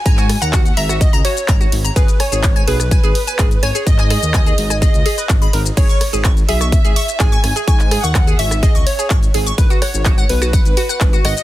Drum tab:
CC |----------------|----------------|----------------|x---------------|
RD |x-x-x-x-x-x-x-x-|x-x-x-x-x-x-x-x-|x-x-x-x-x-x-x-x-|x-x-x-x-x-x-x-x-|
HH |xxoxxxoxxxoxxxox|xxoxxxoxxxoxxxox|xxoxxxoxxxoxxxox|xxoxxxoxxxoxxxox|
SH |xx-xxx-xxx-xxx-x|xx-xxx-xxx-xxx-x|xx-xxx-xxx-xxx-x|xx-xxx-xxx-xxx-x|
CP |-x--x-------x---|----x-------x---|-x--x-------x---|----x-------x---|
SD |--r----r--------|--r----r------r-|--r----r--------|--r----r------r-|
BD |o---o---o---o---|o---o---o---o---|o---o---o---o---|o---o---o---o---|

CC |----------------|----------------|
RD |x-x-x-x-x-x-x-x-|x-x-x-x-x-x-x-x-|
HH |xxoxxxoxxxoxxxox|xxo-xxoxxxoxxxox|
SH |xx-xxx-xxx-xxx-x|xx-xxx-xxx-xxx-x|
CP |-x--x-------x---|----x-------x---|
SD |--r----r--------|--r----r------r-|
BD |o---o---o---o---|o---o---o---o---|